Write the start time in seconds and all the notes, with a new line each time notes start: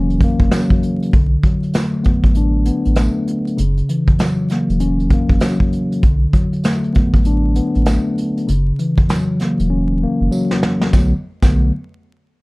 Already playing: E1 C#3 E3 F#3 A#3 C#4
0.10 closed hi-hat
0.21 A#3, kick, closed hi-hat
0.40 F#1, kick, closed hi-hat
0.52 F#3, cross-stick, snare, tambourine
0.70 kick, closed hi-hat
0.83 closed hi-hat
1.02 closed hi-hat
1.13 B1 D3, kick, closed hi-hat
1.43 F#3, kick, closed hi-hat
1.63 closed hi-hat
1.74 A3, cross-stick, snare, closed hi-hat, tambourine
2.04 B3, kick, closed hi-hat
2.24 A1, kick, closed hi-hat
2.35 D4, closed hi-hat
2.65 B3, closed hi-hat
2.85 A1, closed hi-hat
2.95 A3, cross-stick, snare, closed hi-hat, tambourine
3.28 closed hi-hat
3.47 closed hi-hat
3.57 F#1 C#3, closed hi-hat
3.77 closed hi-hat
3.89 E3, closed hi-hat
4.08 kick, closed hi-hat
4.19 F#3, cross-stick, snare, closed hi-hat, tambourine
4.49 A#3, snare, closed hi-hat
4.69 E1, closed hi-hat
4.80 C#4, closed hi-hat
5.00 closed hi-hat
5.10 A#3, kick, closed hi-hat
5.29 F#1, kick, closed hi-hat
5.40 F#3, cross-stick, snare, closed hi-hat, tambourine
5.60 kick, closed hi-hat
5.73 closed hi-hat
5.92 closed hi-hat
6.03 B1 D3, kick, closed hi-hat
6.33 F#3, kick, closed hi-hat
6.53 closed hi-hat
6.64 A3, cross-stick, snare, closed hi-hat, tambourine
6.84 closed hi-hat
6.93 B3, kick, closed hi-hat
7.14 A1, kick, closed hi-hat
7.25 D4, closed hi-hat
7.56 B3, closed hi-hat
7.75 A1, closed hi-hat
7.86 A3, cross-stick, snare, closed hi-hat, tambourine
8.18 closed hi-hat
8.37 closed hi-hat
8.47 F#1 C#3, closed hi-hat
8.79 E3, closed hi-hat
8.98 kick, closed hi-hat
9.09 F#3, cross-stick, snare, closed hi-hat, tambourine
9.40 A#3, snare, closed hi-hat
9.59 E1, closed hi-hat
9.70 C#4
10.03 A#3
10.20 F#1
10.31 F#3, tambourine
10.51 snare
10.63 snare
10.81 snare
10.93 B1 D3 F#3 A3 B3, kick, snare, tambourine
11.42 B1 D3 F#3 A3 B3, kick, snare, tambourine